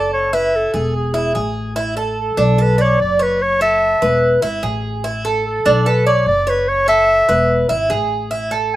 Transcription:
Already playing: upright bass F#1, cuban tres A4, clarinet D5
0.13 clarinet C#5
0.33 cuban tres E4, clarinet B4
0.56 clarinet A4
0.74 upright bass E1, cuban tres G#4
0.96 clarinet G#4
1.14 cuban tres E4
1.35 upright bass A1, cuban tres G#4
1.76 cuban tres E4
1.97 cuban tres A4
2.20 clarinet A4
2.37 upright bass B1, cuban tres D4
2.58 cuban tres A4, clarinet B4
2.78 clarinet C#5, cuban tres D5
3.00 upright bass F#1, clarinet D5
3.19 clarinet B4, cuban tres C#5
3.42 clarinet C#5
3.61 cuban tres A4, clarinet E5
4.02 upright bass E1, cuban tres B4
4.42 upright bass G#1, cuban tres E4
4.63 upright bass A1, cuban tres G#4
5.04 cuban tres E4
5.25 cuban tres A4
5.46 clarinet A4
5.66 upright bass B1, cuban tres D4
5.86 cuban tres A4, clarinet B4
6.06 clarinet C#5, cuban tres D5
6.26 upright bass F#1, clarinet D5
6.47 clarinet B4, cuban tres C#5
6.68 clarinet C#5
6.88 cuban tres A4, clarinet E5
7.29 upright bass E1, cuban tres B4
7.69 upright bass G#1, cuban tres E4
7.90 upright bass A1, cuban tres G#4
8.31 cuban tres E4
8.51 cuban tres A4

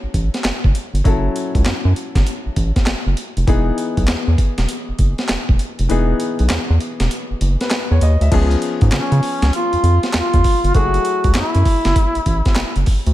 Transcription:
Already playing: grand piano F#3 C#4 E4 A4
0.03 analog synth bass A1
0.14 analog synth bass A1, kick, closed hi-hat
0.34 snare, closed hi-hat
0.44 analog synth bass F#1, snare, clap, closed hi-hat
0.64 analog synth bass F#1, kick
0.75 closed hi-hat
0.93 analog synth bass G1, closed hi-hat
1.04 analog synth bass F#1, grand piano F#3 C#4 E4 A4, kick, closed hi-hat
1.36 closed hi-hat
1.55 analog synth bass C#2, kick, closed hi-hat
1.65 analog synth bass F#2, snare, clap, closed hi-hat
1.85 analog synth bass F#2
1.96 closed hi-hat
2.15 analog synth bass F#1, kick, snare, closed hi-hat
2.27 closed hi-hat
2.46 analog synth bass A1
2.56 analog synth bass A1, kick, closed hi-hat
2.76 kick, snare, closed hi-hat
2.86 analog synth bass F#1, snare, clap, closed hi-hat
3.06 analog synth bass F#1
3.17 closed hi-hat
3.37 analog synth bass F1, closed hi-hat
3.47 analog synth bass E1, grand piano E3 B3 D#4 G#4, kick, closed hi-hat
3.78 closed hi-hat
3.97 analog synth bass B1, kick, closed hi-hat
4.07 analog synth bass E2, snare, clap, closed hi-hat
4.27 analog synth bass E2
4.38 kick, closed hi-hat
4.58 analog synth bass E1, snare, closed hi-hat
4.69 closed hi-hat
4.88 analog synth bass F#1
4.99 analog synth bass F#1, kick, closed hi-hat
5.18 snare, closed hi-hat
5.28 analog synth bass E1, snare, clap, closed hi-hat
5.49 analog synth bass E1, kick
5.59 closed hi-hat
5.79 analog synth bass F1, closed hi-hat
5.89 analog synth bass E1, grand piano E3 B3 D#4 G#4, closed hi-hat
6.20 closed hi-hat
6.39 analog synth bass B1, closed hi-hat
6.49 analog synth bass E2, snare, clap, closed hi-hat
6.70 analog synth bass E2
6.80 closed hi-hat
7.00 analog synth bass E1, snare, closed hi-hat
7.11 closed hi-hat
7.30 analog synth bass F#1
7.41 analog synth bass F#1, closed hi-hat
7.61 grand piano B4, snare, closed hi-hat
7.70 snare, clap, closed hi-hat
7.91 analog synth bass E2, grand piano C#5
8.01 analog synth bass D#2, grand piano D#5, closed hi-hat
8.21 analog synth bass D2, grand piano E5, closed hi-hat
8.31 analog synth bass C#2, grand piano F3 B3 C#4 G#4, kick, closed hi-hat, crash
8.51 closed hi-hat
8.62 closed hi-hat
8.81 analog synth bass G#2, kick, closed hi-hat
8.91 analog synth bass C#3, duduk C#4, snare, clap, closed hi-hat
9.12 analog synth bass C#3, closed hi-hat
9.23 open hi-hat
9.42 analog synth bass C#2, snare, closed hi-hat
9.53 duduk F4, closed hi-hat
9.73 analog synth bass F2, closed hi-hat
9.83 analog synth bass F2, closed hi-hat
10.03 snare, closed hi-hat
10.13 analog synth bass E2, duduk F4, snare, clap, closed hi-hat
10.33 analog synth bass E2, kick, closed hi-hat
10.44 kick, open hi-hat
10.64 analog synth bass G1, closed hi-hat
10.74 analog synth bass F#1, grand piano F#3 A3 E4 G#4, duduk F#4, kick, closed hi-hat
10.94 closed hi-hat
11.05 closed hi-hat
11.24 analog synth bass C#2, kick, closed hi-hat
11.34 analog synth bass F#2, duduk E4, snare, clap, closed hi-hat
11.55 analog synth bass F#2, closed hi-hat
11.65 kick, open hi-hat
11.85 analog synth bass F#1, snare, closed hi-hat
11.96 kick, closed hi-hat
12.15 analog synth bass A1, closed hi-hat
12.26 analog synth bass A1, kick, closed hi-hat
12.45 kick, snare, closed hi-hat
12.55 analog synth bass F#1, snare, clap, closed hi-hat
12.76 analog synth bass F#1, closed hi-hat
12.86 kick, open hi-hat
13.06 analog synth bass D2, closed hi-hat

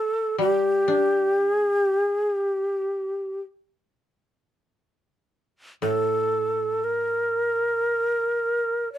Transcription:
Already playing: shakuhachi A4
0.38 koto G3, shakuhachi G4
0.88 koto D4
1.46 shakuhachi G#4
1.75 shakuhachi G4
2.06 shakuhachi G#4
2.35 shakuhachi G4
5.82 koto A2, shakuhachi A4
6.84 shakuhachi A#4
8.93 shakuhachi D5

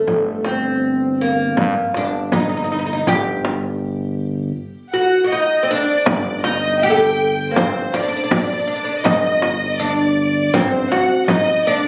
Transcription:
Already playing: oud A3
0.07 fm bass G1, frame drum
0.45 oud C4, frame drum
1.21 oud A#3
1.57 fm bass G2, frame drum
1.94 fm bass G1, oud D4, frame drum
2.32 oud D#4, frame drum
2.40 oud D#4
2.49 oud D#4
2.57 oud D#4
2.64 oud D#4
2.72 oud D#4
2.79 oud D#4
2.86 oud D#4
2.93 oud D#4
3.07 fm bass G1, oud G4, frame drum
3.45 frame drum
4.93 oud F#4, violin section F#5
5.24 oud F#4
5.31 oud D#4, violin section D#5
5.63 oud C4
5.68 oud D4, violin section D5
6.06 fm bass G1, frame drum
6.43 oud D#4, violin section D#5, frame drum
6.79 oud G4, violin section G5
6.90 oud A4
6.95 oud G4, violin section G5
7.51 oud A#3, violin section C5
7.56 fm bass G1, oud C4, frame drum
7.93 oud D4, violin section D5, frame drum
8.02 oud D4
8.08 oud D4
8.16 oud D4
8.24 oud D4
8.31 oud D4, frame drum
8.39 oud D4
8.46 oud D4
8.53 oud D4
8.60 oud D4
8.67 oud D4
8.76 oud D4
8.85 oud D4
8.89 oud D4
9.04 fm bass G1, oud D#4, violin section D#5, frame drum
9.42 frame drum
9.79 oud D4, violin section D5
10.53 fm bass G1, oud C4, violin section C5, frame drum
10.89 oud F#4, violin section F#5, frame drum
11.27 oud D#4, violin section D#5, frame drum
11.65 oud D4, violin section D5

